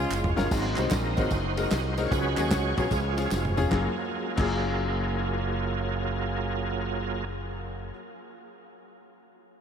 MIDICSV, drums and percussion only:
0, 0, Header, 1, 2, 480
1, 0, Start_track
1, 0, Key_signature, 6, "major"
1, 0, Tempo, 401338
1, 609, Time_signature, 4, 2, 24, 8
1, 11492, End_track
2, 0, Start_track
2, 0, Title_t, "Drums"
2, 135, Note_on_c, 9, 39, 85
2, 135, Note_on_c, 9, 54, 82
2, 255, Note_off_c, 9, 39, 0
2, 255, Note_off_c, 9, 54, 0
2, 290, Note_on_c, 9, 43, 110
2, 409, Note_off_c, 9, 43, 0
2, 447, Note_on_c, 9, 54, 59
2, 453, Note_on_c, 9, 38, 83
2, 566, Note_off_c, 9, 54, 0
2, 573, Note_off_c, 9, 38, 0
2, 613, Note_on_c, 9, 54, 88
2, 615, Note_on_c, 9, 36, 108
2, 617, Note_on_c, 9, 49, 96
2, 733, Note_off_c, 9, 54, 0
2, 734, Note_off_c, 9, 36, 0
2, 736, Note_off_c, 9, 49, 0
2, 912, Note_on_c, 9, 39, 83
2, 912, Note_on_c, 9, 54, 60
2, 919, Note_on_c, 9, 51, 69
2, 1032, Note_off_c, 9, 39, 0
2, 1032, Note_off_c, 9, 54, 0
2, 1038, Note_off_c, 9, 51, 0
2, 1081, Note_on_c, 9, 39, 94
2, 1081, Note_on_c, 9, 54, 100
2, 1093, Note_on_c, 9, 36, 91
2, 1095, Note_on_c, 9, 38, 119
2, 1096, Note_on_c, 9, 51, 84
2, 1201, Note_off_c, 9, 39, 0
2, 1201, Note_off_c, 9, 54, 0
2, 1213, Note_off_c, 9, 36, 0
2, 1214, Note_off_c, 9, 38, 0
2, 1216, Note_off_c, 9, 51, 0
2, 1399, Note_on_c, 9, 54, 53
2, 1409, Note_on_c, 9, 36, 110
2, 1410, Note_on_c, 9, 51, 73
2, 1518, Note_off_c, 9, 54, 0
2, 1529, Note_off_c, 9, 36, 0
2, 1530, Note_off_c, 9, 51, 0
2, 1561, Note_on_c, 9, 54, 77
2, 1568, Note_on_c, 9, 36, 97
2, 1570, Note_on_c, 9, 51, 77
2, 1681, Note_off_c, 9, 54, 0
2, 1688, Note_off_c, 9, 36, 0
2, 1690, Note_off_c, 9, 51, 0
2, 1881, Note_on_c, 9, 54, 71
2, 1882, Note_on_c, 9, 51, 63
2, 2001, Note_off_c, 9, 54, 0
2, 2002, Note_off_c, 9, 51, 0
2, 2049, Note_on_c, 9, 39, 88
2, 2049, Note_on_c, 9, 54, 91
2, 2050, Note_on_c, 9, 38, 112
2, 2051, Note_on_c, 9, 51, 82
2, 2168, Note_off_c, 9, 39, 0
2, 2168, Note_off_c, 9, 54, 0
2, 2169, Note_off_c, 9, 38, 0
2, 2171, Note_off_c, 9, 51, 0
2, 2362, Note_on_c, 9, 54, 59
2, 2365, Note_on_c, 9, 51, 49
2, 2366, Note_on_c, 9, 38, 36
2, 2452, Note_off_c, 9, 38, 0
2, 2452, Note_on_c, 9, 38, 30
2, 2481, Note_off_c, 9, 54, 0
2, 2484, Note_off_c, 9, 51, 0
2, 2531, Note_on_c, 9, 36, 99
2, 2533, Note_on_c, 9, 54, 82
2, 2534, Note_on_c, 9, 51, 85
2, 2572, Note_off_c, 9, 38, 0
2, 2650, Note_off_c, 9, 36, 0
2, 2652, Note_off_c, 9, 54, 0
2, 2654, Note_off_c, 9, 51, 0
2, 2834, Note_on_c, 9, 51, 64
2, 2837, Note_on_c, 9, 39, 89
2, 2837, Note_on_c, 9, 54, 66
2, 2954, Note_off_c, 9, 51, 0
2, 2957, Note_off_c, 9, 39, 0
2, 2957, Note_off_c, 9, 54, 0
2, 3005, Note_on_c, 9, 38, 119
2, 3005, Note_on_c, 9, 39, 101
2, 3005, Note_on_c, 9, 54, 110
2, 3006, Note_on_c, 9, 36, 89
2, 3007, Note_on_c, 9, 51, 81
2, 3125, Note_off_c, 9, 38, 0
2, 3125, Note_off_c, 9, 39, 0
2, 3125, Note_off_c, 9, 54, 0
2, 3126, Note_off_c, 9, 36, 0
2, 3126, Note_off_c, 9, 51, 0
2, 3318, Note_on_c, 9, 54, 53
2, 3320, Note_on_c, 9, 51, 64
2, 3322, Note_on_c, 9, 36, 109
2, 3438, Note_off_c, 9, 54, 0
2, 3440, Note_off_c, 9, 51, 0
2, 3442, Note_off_c, 9, 36, 0
2, 3478, Note_on_c, 9, 54, 81
2, 3483, Note_on_c, 9, 36, 111
2, 3490, Note_on_c, 9, 51, 68
2, 3598, Note_off_c, 9, 54, 0
2, 3603, Note_off_c, 9, 36, 0
2, 3609, Note_off_c, 9, 51, 0
2, 3797, Note_on_c, 9, 54, 67
2, 3799, Note_on_c, 9, 51, 68
2, 3917, Note_off_c, 9, 54, 0
2, 3919, Note_off_c, 9, 51, 0
2, 3962, Note_on_c, 9, 39, 91
2, 3962, Note_on_c, 9, 54, 91
2, 3968, Note_on_c, 9, 38, 62
2, 4082, Note_off_c, 9, 39, 0
2, 4082, Note_off_c, 9, 54, 0
2, 4087, Note_off_c, 9, 38, 0
2, 4126, Note_on_c, 9, 45, 77
2, 4245, Note_off_c, 9, 45, 0
2, 4275, Note_on_c, 9, 54, 53
2, 4281, Note_on_c, 9, 43, 105
2, 4394, Note_off_c, 9, 54, 0
2, 4400, Note_off_c, 9, 43, 0
2, 4444, Note_on_c, 9, 36, 100
2, 4444, Note_on_c, 9, 39, 88
2, 4445, Note_on_c, 9, 38, 86
2, 4563, Note_off_c, 9, 39, 0
2, 4564, Note_off_c, 9, 36, 0
2, 4564, Note_off_c, 9, 38, 0
2, 5233, Note_on_c, 9, 49, 93
2, 5239, Note_on_c, 9, 36, 119
2, 5240, Note_on_c, 9, 39, 69
2, 5353, Note_off_c, 9, 49, 0
2, 5358, Note_off_c, 9, 36, 0
2, 5360, Note_off_c, 9, 39, 0
2, 11492, End_track
0, 0, End_of_file